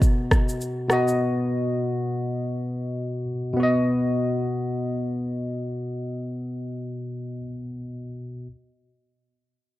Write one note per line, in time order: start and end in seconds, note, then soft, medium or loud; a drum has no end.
0.00 0.85 B2 medium
0.00 0.86 B3 medium
0.00 0.87 F#4 medium
0.00 0.88 D#5 medium
0.00 kick medium
0.00 shaker medium
0.31 kick medium
0.31 cross-stick loud
0.31 shaker soft
0.49 shaker medium
0.61 shaker medium
0.88 3.23 B2 medium
0.88 3.24 B3 medium
0.88 3.25 F#4 medium
0.88 cross-stick medium
0.88 shaker soft
0.93 3.25 D#5 medium
1.08 shaker medium
3.53 7.39 B2 medium
3.53 7.41 B3 medium
3.60 7.42 F#4 medium
3.60 7.44 D#5 medium